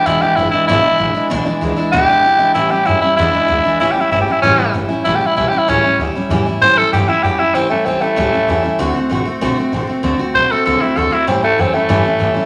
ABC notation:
X:1
M:4/4
L:1/8
Q:1/4=192
K:Amix
V:1 name="Tenor saxophone"
E G E E E4 | z4 G4 | E G E E E4 | (3E G E (3E G E C2 z2 |
(3E G E (3E G E C2 z2 | z2 =c A G E G E | =C A, C A,4- A,- | A, z6 z |
z2 =c A A E A E | =C A, C A,4- A, |]
V:2 name="Steel-string acoustic guitar"
[E,,B,,E,^G,DE] [E,G,DE] [E,G,DE] [E,G,DE] [E,,B,,E,G,DE] [E,G,DE] [E,G,DE] [E,G,DE] | [E,,B,,E,^G,DE] [E,G,DE] [E,G,DE] [E,G,DE] [E,,B,,E,G,DE] [E,G,DE] [E,G,DE] [E,G,DE] | [A,,E,G,CE] [G,CE] [E,G,CE] [G,CE] [E,,B,,E,^G,DE] [E,G,DE] [E,G,DE] [E,G,DE] | [A,,E,G,CE] [G,CE] [E,G,CE] [G,CE] [A,,E,G,CE] [G,CE] [E,G,CE] [G,CE] |
[A,,E,G,CE] [G,CE] [E,G,CE] [G,CE] [A,,E,G,CE] [G,CE] [E,G,CE] [G,CE] | [A,,E,G,CE] [G,CE] [E,G,CE] [G,CE] [A,,E,G,CE] [G,CE] [E,G,CE] [G,CE] | [A,,E,G,CE] [G,CE] [E,G,CE] [G,CE] [A,,E,G,CE] [G,CE] [E,G,CE] [G,CE] | [D,A,=CF] [A,CF] [D,A,CF] [A,CF] [D,A,CF] [A,CF] [D,A,CF] [A,CF] |
[D,A,=CF] [A,CF] [D,A,CF] [A,CF] [D,A,CF] [A,CF] [D,A,CF] [A,CF] | [A,,E,G,CE] [G,CE] [E,G,CE] [G,CE] [A,,E,G,CE] [G,CE] [E,G,CE] [G,CE] |]
V:3 name="Upright bass" clef=bass
E,,, z F,,, z ^G,,, z A,,, z | B,,, z C,, z D,, z E,, z | A,, z F,, z E,, z D,, z | A,,, z G,,, z F,,, z G,,, z |
A,,, z B,,, z C,, z D,, z | E,, z A,, z G,, z F,, z | E,, z D,, z C,, z E,, z | D,, z A,,, z B,,, z A,,, z |
D,, z B,,, z =C,, z D,, z | A,, z F,, z G,, z A,, z |]